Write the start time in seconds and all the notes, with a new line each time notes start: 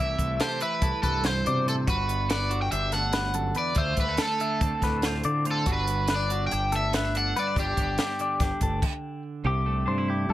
Already playing: C2 E5
0.00 C3 E3 A3 E4 G4 E5
0.19 C2 A3, kick, closed hi-hat
0.40 G4 A4 C5, snare, closed hi-hat
0.61 E3 B4 E5, closed hi-hat
0.82 C2 E4 A4, kick, closed hi-hat
1.02 C2 G2 A4 B4, kick, closed hi-hat
1.24 C3 C5, snare, closed hi-hat
1.45 B2 C3 D5, closed hi-hat
1.66 A2 A4 C5, closed hi-hat
1.87 G1 G2 F#4 B4, kick, closed hi-hat
2.08 B3, closed hi-hat
2.29 F#4 B4 D5, snare, closed hi-hat
2.49 D3 F#4, closed hi-hat
2.62 G5
2.72 G1 D4 G4 E5, closed hi-hat
2.92 D2 A4 F#5, snare, closed hi-hat
3.12 G2 B4, snare, closed hi-hat
3.34 F#2 A4, closed hi-hat
3.54 E2 B4 D5, closed hi-hat
3.75 D2 F4 C5 E5, kick, closed hi-hat
3.96 D2 G3, kick, closed hi-hat
4.00 B4
4.09 A3
4.17 D4 A4, snare, closed hi-hat
4.23 A4
4.29 F4
4.40 D3 E5, closed hi-hat
4.61 D2 C4 A4, kick, closed hi-hat
4.81 D2 A2 B4, kick, snare, closed hi-hat
5.02 F4 C5, snare, closed hi-hat
5.24 D3 C4 D5, closed hi-hat
5.45 D2 F4 C5, closed hi-hat
5.51 A4
5.66 G1 G2 D3 B3 D4 F#4, kick, closed hi-hat
5.73 B4
5.87 B3, closed hi-hat
6.08 D4 B4, snare, closed hi-hat
6.16 D5
6.29 D3 F#4, closed hi-hat
6.47 G5
6.51 G1 D4 G4, closed hi-hat
6.72 D2 A4, closed hi-hat
6.76 E5
6.93 B3 B4, snare, closed hi-hat
7.05 D4
7.15 D4 A4 F#5, closed hi-hat
7.36 G2 B3 B4 D5, closed hi-hat
7.47 D4
7.56 G1 G2 D4 G4 D5, kick, closed hi-hat
7.77 G1 B3, kick, closed hi-hat
7.98 D4 G4, snare, closed hi-hat
8.19 D3 D5, closed hi-hat
8.40 G1 D4 G4, kick, snare, closed hi-hat
8.61 G1 D2 A4, kick, closed hi-hat
8.82 kick, crash
9.44 C2 C3 G4
9.66 A3
9.86 G2 D4 C5
9.98 E4
10.08 E4 G4
10.29 G2 A4